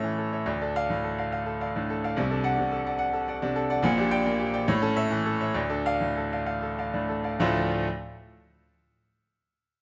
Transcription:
0.00 0.45 A2 loud
0.00 0.27 E3 medium
0.00 0.50 C#4 medium
0.00 0.18 A4 medium
0.00 0.33 C#5 medium
0.00 0.33 E5 loud
0.18 0.42 A4 medium
0.33 0.46 C#5 medium
0.33 0.46 E5 medium
0.46 2.12 D2 loud
0.46 0.70 D5 medium
0.61 0.84 D4 medium
0.61 0.84 A4 medium
0.76 0.89 D5 medium
0.76 0.89 F5 loud
0.90 1.13 A2 medium
1.04 1.27 A4 medium
1.18 1.31 D5 medium
1.18 1.31 F5 medium
1.32 1.55 F5 medium
1.46 1.69 A4 medium
1.61 1.74 D5 medium
1.61 1.74 F5 medium
1.76 1.98 A2 medium
1.76 1.98 D4 medium
1.90 2.12 A4 medium
2.04 2.16 D5 medium
2.04 2.17 F5 medium
2.16 3.79 C2 loud
2.16 2.56 C3 loud
2.16 2.40 D5 medium
2.31 2.53 D4 medium
2.31 2.53 A4 medium
2.43 2.57 D5 medium
2.43 2.57 F#5 loud
2.58 2.80 C3 medium
2.72 2.94 A4 medium
2.86 2.99 D5 medium
2.86 2.97 F#5 medium
2.99 3.21 F#5 loud
3.13 3.36 A4 medium
3.28 3.40 D5 medium
3.28 3.41 F#5 medium
3.42 3.64 C3 loud
3.42 3.64 D4 medium
3.56 3.78 A4 medium
3.70 3.82 D5 loud
3.70 3.83 F#5 loud
3.83 4.65 A#1 loud
3.83 4.66 A#2 loud
3.83 4.06 D5 loud
3.98 4.20 D4 loud
3.98 4.20 G4 loud
4.11 4.24 D5 loud
4.11 4.24 G5 loud
4.26 4.48 A#3 loud
4.39 4.62 G4 medium
4.53 4.66 D5 medium
4.53 4.67 G5 loud
4.68 5.53 A2 loud
4.68 4.91 C#5 loud
4.82 5.05 C#4 medium
4.82 5.05 A4 loud
4.96 5.10 C#5 medium
4.96 5.10 E5 loud
5.11 5.35 E3 loud
5.26 5.50 A4 medium
5.41 5.54 C#5 medium
5.41 5.54 E5 loud
5.54 7.36 D2 loud
5.54 5.80 D5 medium
5.70 5.95 D4 medium
5.70 5.95 A4 medium
5.86 6.00 D5 medium
5.86 6.00 F5 loud
6.01 6.26 A2 medium
6.17 6.42 A4 medium
6.32 6.46 D5 medium
6.32 6.45 F5 medium
6.46 6.72 F5 medium
6.62 6.88 A4 medium
6.78 6.92 D5 medium
6.78 6.93 F5 medium
6.93 7.19 A2 medium
6.93 7.19 D4 medium
7.09 7.34 A4 medium
7.24 7.39 D5 medium
7.24 7.39 F5 medium
7.40 7.74 D2 loud
7.40 7.74 A2 loud
7.40 7.75 F3 loud
7.40 7.75 A3 loud
7.40 7.75 D4 loud
7.40 7.75 F4 loud

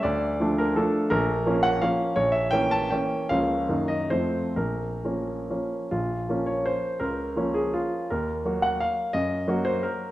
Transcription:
0.03 0.40 D2 medium
0.03 0.59 D5 medium
0.40 0.73 F3 medium
0.40 0.73 A3 medium
0.40 0.74 D4 medium
0.58 0.76 A#4 medium
0.76 1.08 F3 soft
0.76 1.08 A3 medium
0.76 1.08 D4 medium
0.76 1.11 A4 medium
1.10 1.46 A#1 medium
1.10 1.64 A#4 medium
1.46 1.78 F3 medium
1.46 1.78 A#3 medium
1.46 1.78 C#4 medium
1.63 1.81 F#5 medium
1.82 2.13 F3 soft
1.82 2.13 A#3 medium
1.82 2.14 C#4 medium
1.82 2.16 F5 medium
2.16 2.51 A#1 medium
2.16 2.33 C#5 medium
2.32 2.51 E5 medium
2.51 2.88 E3 medium
2.51 2.88 A#3 medium
2.51 2.88 C#4 medium
2.51 2.72 G5 loud
2.71 2.92 A5 medium
2.90 3.25 E3 soft
2.90 3.25 A#3 soft
2.90 3.25 C#4 medium
2.90 3.28 G5 medium
3.29 3.67 C#2 medium
3.29 3.65 F3 soft
3.29 3.65 A#3 soft
3.29 3.65 C#4 soft
3.29 3.89 F5 medium
3.69 4.10 F#2 medium
3.69 4.07 D#3 soft
3.69 4.07 A#3 soft
3.69 4.08 D#4 soft
3.88 4.10 D#5 medium
4.10 4.55 F2 soft
4.10 4.52 F3 soft
4.10 4.53 A3 soft
4.10 4.53 C4 soft
4.10 4.56 C5 medium
4.56 5.03 A#1 soft
4.56 5.50 A#4 medium
5.05 5.46 F3 soft
5.05 5.46 A#3 soft
5.05 5.46 C#4 soft
5.50 5.88 F3 soft
5.50 5.88 A#3 soft
5.50 5.88 C#4 soft
5.91 6.29 A#1 soft
5.91 6.49 F4 medium
6.29 6.98 F3 soft
6.29 6.98 A#3 soft
6.29 6.99 C#4 soft
6.46 6.66 C#5 medium
6.66 7.01 C5 medium
7.00 7.35 C#2 soft
7.00 7.55 A#4 medium
7.36 8.06 F3 soft
7.36 8.06 A#3 soft
7.36 8.06 C#4 medium
7.54 7.74 G#4 medium
7.74 8.09 F4 medium
8.10 8.45 D#2 soft
8.10 8.63 A#4 medium
8.45 9.10 F#3 soft
8.45 9.10 A#3 medium
8.45 9.10 F#4 medium
8.62 8.80 F#5 medium
8.80 9.14 F5 medium
9.13 9.47 F#2 medium
9.13 9.66 D#5 medium
9.48 10.12 F#3 medium
9.48 10.12 A#3 medium
9.48 10.12 F#4 medium
9.65 9.83 C5 medium
9.83 10.12 A#4 medium

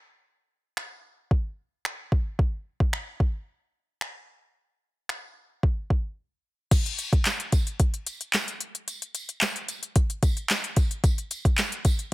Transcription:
0.77 finger snap loud
1.31 kick medium
1.85 finger snap loud
2.12 kick medium
2.39 kick loud
2.80 kick loud
2.93 finger snap loud
3.20 kick medium
4.01 finger snap loud
5.09 finger snap loud
5.63 kick medium
5.90 kick medium
6.71 kick loud
6.71 closed hi-hat medium
6.71 crash loud
6.71 tambourine soft
6.86 closed hi-hat medium
6.98 closed hi-hat medium
6.98 tambourine medium
7.13 kick loud
7.13 closed hi-hat soft
7.25 snare medium
7.25 clap loud
7.25 closed hi-hat loud
7.25 tambourine medium
7.40 closed hi-hat medium
7.52 kick medium
7.52 closed hi-hat medium
7.52 tambourine medium
7.67 closed hi-hat soft
7.80 kick loud
7.80 closed hi-hat medium
7.94 closed hi-hat medium
8.07 closed hi-hat medium
8.07 tambourine soft
8.21 closed hi-hat soft
8.33 snare loud
8.33 clap loud
8.33 closed hi-hat loud
8.33 tambourine medium
8.48 closed hi-hat medium
8.61 closed hi-hat medium
8.75 closed hi-hat medium
8.88 closed hi-hat medium
8.88 tambourine medium
9.02 closed hi-hat medium
9.15 closed hi-hat medium
9.15 tambourine medium
9.29 closed hi-hat medium
9.41 snare medium
9.41 clap loud
9.41 closed hi-hat loud
9.41 tambourine medium
9.56 closed hi-hat medium
9.68 closed hi-hat medium
9.68 tambourine medium
9.83 closed hi-hat soft
9.96 kick loud
9.96 closed hi-hat medium
10.10 closed hi-hat medium
10.23 kick loud
10.23 closed hi-hat medium
10.23 tambourine soft
10.37 closed hi-hat soft
10.50 snare loud
10.50 clap loud
10.50 closed hi-hat loud
10.50 tambourine medium
10.64 closed hi-hat medium
10.76 kick medium
10.76 closed hi-hat medium
10.76 tambourine soft
10.91 closed hi-hat medium
11.04 kick loud
11.04 closed hi-hat medium
11.04 tambourine medium
11.18 closed hi-hat medium
11.31 closed hi-hat medium
11.31 tambourine medium
11.45 kick loud
11.45 closed hi-hat medium
11.58 snare medium
11.58 clap loud
11.58 closed hi-hat loud
11.58 tambourine medium
11.72 closed hi-hat medium
11.85 kick medium
11.85 closed hi-hat medium
11.85 tambourine medium
11.99 closed hi-hat medium

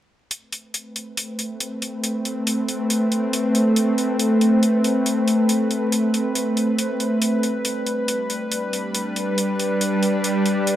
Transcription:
0.31 7.18 A3 medium
0.31 7.18 C4 medium
0.31 10.76 B4 medium
0.31 closed hi-hat medium
0.53 closed hi-hat soft
0.74 closed hi-hat medium
0.96 closed hi-hat medium
1.17 closed hi-hat medium
1.39 closed hi-hat medium
1.60 closed hi-hat medium
1.82 closed hi-hat medium
2.04 closed hi-hat medium
2.25 closed hi-hat soft
2.47 closed hi-hat medium
2.68 closed hi-hat medium
2.90 closed hi-hat medium
3.12 closed hi-hat soft
3.33 closed hi-hat medium
3.55 closed hi-hat medium
3.76 closed hi-hat medium
3.98 closed hi-hat soft
4.19 closed hi-hat medium
4.41 closed hi-hat soft
4.63 closed hi-hat medium
4.84 closed hi-hat medium
5.06 closed hi-hat medium
5.28 closed hi-hat medium
5.49 closed hi-hat medium
5.71 closed hi-hat soft
5.92 closed hi-hat medium
6.14 closed hi-hat soft
6.35 closed hi-hat medium
6.57 closed hi-hat soft
6.78 closed hi-hat medium
7.00 closed hi-hat soft
7.22 10.76 G3 medium
7.22 10.76 D4 medium
7.22 closed hi-hat medium
7.43 closed hi-hat soft
7.65 closed hi-hat medium
7.87 closed hi-hat soft
8.08 closed hi-hat medium
8.30 closed hi-hat soft
8.52 closed hi-hat medium
8.73 closed hi-hat soft
8.95 closed hi-hat medium
9.16 closed hi-hat soft
9.38 closed hi-hat medium
9.60 closed hi-hat soft
9.81 closed hi-hat medium
10.03 closed hi-hat soft
10.24 closed hi-hat medium
10.46 closed hi-hat soft
10.67 closed hi-hat medium

